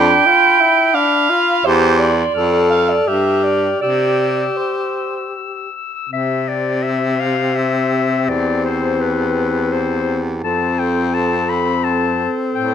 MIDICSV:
0, 0, Header, 1, 5, 480
1, 0, Start_track
1, 0, Key_signature, 0, "major"
1, 0, Tempo, 705053
1, 1127, Time_signature, 3, 2, 24, 8
1, 2095, Tempo, 754717
1, 4015, Tempo, 726392
1, 5935, Tempo, 708383
1, 8471, End_track
2, 0, Start_track
2, 0, Title_t, "Clarinet"
2, 0, Program_c, 0, 71
2, 52, Note_on_c, 0, 83, 67
2, 178, Note_off_c, 0, 83, 0
2, 178, Note_on_c, 0, 83, 70
2, 294, Note_off_c, 0, 83, 0
2, 294, Note_on_c, 0, 83, 78
2, 419, Note_off_c, 0, 83, 0
2, 419, Note_on_c, 0, 83, 76
2, 535, Note_off_c, 0, 83, 0
2, 535, Note_on_c, 0, 83, 73
2, 644, Note_off_c, 0, 83, 0
2, 644, Note_on_c, 0, 83, 75
2, 771, Note_off_c, 0, 83, 0
2, 771, Note_on_c, 0, 83, 74
2, 892, Note_off_c, 0, 83, 0
2, 892, Note_on_c, 0, 83, 77
2, 1013, Note_off_c, 0, 83, 0
2, 1013, Note_on_c, 0, 83, 74
2, 1130, Note_off_c, 0, 83, 0
2, 1134, Note_on_c, 0, 84, 68
2, 1240, Note_off_c, 0, 84, 0
2, 1240, Note_on_c, 0, 84, 62
2, 1361, Note_off_c, 0, 84, 0
2, 1361, Note_on_c, 0, 84, 69
2, 1482, Note_off_c, 0, 84, 0
2, 1482, Note_on_c, 0, 84, 63
2, 1592, Note_off_c, 0, 84, 0
2, 1596, Note_on_c, 0, 89, 60
2, 1716, Note_off_c, 0, 89, 0
2, 1716, Note_on_c, 0, 89, 64
2, 1835, Note_off_c, 0, 89, 0
2, 1835, Note_on_c, 0, 89, 63
2, 1957, Note_off_c, 0, 89, 0
2, 1957, Note_on_c, 0, 89, 58
2, 2086, Note_off_c, 0, 89, 0
2, 2090, Note_on_c, 0, 89, 59
2, 2204, Note_off_c, 0, 89, 0
2, 2204, Note_on_c, 0, 89, 57
2, 2331, Note_off_c, 0, 89, 0
2, 2331, Note_on_c, 0, 89, 54
2, 2449, Note_off_c, 0, 89, 0
2, 2449, Note_on_c, 0, 89, 53
2, 2565, Note_off_c, 0, 89, 0
2, 2569, Note_on_c, 0, 88, 56
2, 2692, Note_off_c, 0, 88, 0
2, 2692, Note_on_c, 0, 88, 49
2, 2812, Note_off_c, 0, 88, 0
2, 2812, Note_on_c, 0, 88, 51
2, 2939, Note_off_c, 0, 88, 0
2, 2939, Note_on_c, 0, 88, 52
2, 3061, Note_off_c, 0, 88, 0
2, 3061, Note_on_c, 0, 88, 49
2, 3177, Note_off_c, 0, 88, 0
2, 3177, Note_on_c, 0, 88, 51
2, 3295, Note_off_c, 0, 88, 0
2, 3295, Note_on_c, 0, 88, 52
2, 3417, Note_off_c, 0, 88, 0
2, 3417, Note_on_c, 0, 88, 49
2, 3541, Note_off_c, 0, 88, 0
2, 3541, Note_on_c, 0, 88, 49
2, 3662, Note_off_c, 0, 88, 0
2, 3662, Note_on_c, 0, 88, 48
2, 3793, Note_off_c, 0, 88, 0
2, 3793, Note_on_c, 0, 88, 48
2, 3913, Note_off_c, 0, 88, 0
2, 3913, Note_on_c, 0, 88, 51
2, 4024, Note_off_c, 0, 88, 0
2, 4035, Note_on_c, 0, 76, 73
2, 4271, Note_on_c, 0, 74, 67
2, 4281, Note_off_c, 0, 76, 0
2, 4499, Note_on_c, 0, 76, 69
2, 4509, Note_off_c, 0, 74, 0
2, 4743, Note_on_c, 0, 77, 74
2, 4753, Note_off_c, 0, 76, 0
2, 4980, Note_on_c, 0, 76, 71
2, 4990, Note_off_c, 0, 77, 0
2, 5465, Note_on_c, 0, 74, 69
2, 5475, Note_off_c, 0, 76, 0
2, 5697, Note_off_c, 0, 74, 0
2, 5701, Note_on_c, 0, 72, 66
2, 5938, Note_on_c, 0, 71, 70
2, 5948, Note_off_c, 0, 72, 0
2, 6422, Note_on_c, 0, 72, 72
2, 6432, Note_off_c, 0, 71, 0
2, 6793, Note_off_c, 0, 72, 0
2, 6908, Note_on_c, 0, 81, 71
2, 7145, Note_on_c, 0, 79, 74
2, 7155, Note_off_c, 0, 81, 0
2, 7382, Note_on_c, 0, 81, 70
2, 7392, Note_off_c, 0, 79, 0
2, 7622, Note_on_c, 0, 83, 82
2, 7632, Note_off_c, 0, 81, 0
2, 7858, Note_on_c, 0, 81, 80
2, 7868, Note_off_c, 0, 83, 0
2, 8170, Note_off_c, 0, 81, 0
2, 8338, Note_on_c, 0, 79, 75
2, 8471, Note_off_c, 0, 79, 0
2, 8471, End_track
3, 0, Start_track
3, 0, Title_t, "Alto saxophone"
3, 0, Program_c, 1, 65
3, 0, Note_on_c, 1, 79, 127
3, 643, Note_on_c, 1, 77, 109
3, 653, Note_off_c, 1, 79, 0
3, 1127, Note_on_c, 1, 72, 98
3, 1137, Note_off_c, 1, 77, 0
3, 1358, Note_on_c, 1, 74, 89
3, 1369, Note_off_c, 1, 72, 0
3, 1835, Note_off_c, 1, 74, 0
3, 1839, Note_on_c, 1, 77, 92
3, 1971, Note_on_c, 1, 74, 83
3, 1981, Note_off_c, 1, 77, 0
3, 2095, Note_on_c, 1, 76, 83
3, 2104, Note_off_c, 1, 74, 0
3, 2322, Note_on_c, 1, 74, 83
3, 2332, Note_off_c, 1, 76, 0
3, 2555, Note_off_c, 1, 74, 0
3, 2559, Note_on_c, 1, 74, 88
3, 3043, Note_on_c, 1, 72, 60
3, 3053, Note_off_c, 1, 74, 0
3, 3527, Note_off_c, 1, 72, 0
3, 4014, Note_on_c, 1, 67, 53
3, 6906, Note_on_c, 1, 69, 56
3, 6916, Note_off_c, 1, 67, 0
3, 8471, Note_off_c, 1, 69, 0
3, 8471, End_track
4, 0, Start_track
4, 0, Title_t, "Tenor saxophone"
4, 0, Program_c, 2, 66
4, 0, Note_on_c, 2, 62, 87
4, 176, Note_on_c, 2, 65, 74
4, 187, Note_off_c, 2, 62, 0
4, 406, Note_on_c, 2, 64, 82
4, 417, Note_off_c, 2, 65, 0
4, 641, Note_on_c, 2, 62, 79
4, 652, Note_off_c, 2, 64, 0
4, 883, Note_on_c, 2, 65, 82
4, 893, Note_off_c, 2, 62, 0
4, 1121, Note_off_c, 2, 65, 0
4, 1125, Note_on_c, 2, 67, 82
4, 1430, Note_off_c, 2, 67, 0
4, 1605, Note_on_c, 2, 69, 76
4, 2093, Note_on_c, 2, 67, 74
4, 2103, Note_off_c, 2, 69, 0
4, 2568, Note_off_c, 2, 67, 0
4, 2571, Note_on_c, 2, 67, 64
4, 3752, Note_off_c, 2, 67, 0
4, 4012, Note_on_c, 2, 60, 53
4, 6871, Note_off_c, 2, 60, 0
4, 6908, Note_on_c, 2, 60, 53
4, 8471, Note_off_c, 2, 60, 0
4, 8471, End_track
5, 0, Start_track
5, 0, Title_t, "Baritone saxophone"
5, 0, Program_c, 3, 67
5, 0, Note_on_c, 3, 41, 95
5, 92, Note_off_c, 3, 41, 0
5, 1124, Note_on_c, 3, 40, 91
5, 1523, Note_off_c, 3, 40, 0
5, 1600, Note_on_c, 3, 41, 78
5, 2011, Note_off_c, 3, 41, 0
5, 2091, Note_on_c, 3, 43, 66
5, 2487, Note_off_c, 3, 43, 0
5, 2569, Note_on_c, 3, 48, 65
5, 2974, Note_off_c, 3, 48, 0
5, 4014, Note_on_c, 3, 48, 62
5, 5467, Note_on_c, 3, 40, 59
5, 5477, Note_off_c, 3, 48, 0
5, 6902, Note_off_c, 3, 40, 0
5, 6906, Note_on_c, 3, 41, 62
5, 8131, Note_off_c, 3, 41, 0
5, 8337, Note_on_c, 3, 45, 64
5, 8471, Note_off_c, 3, 45, 0
5, 8471, End_track
0, 0, End_of_file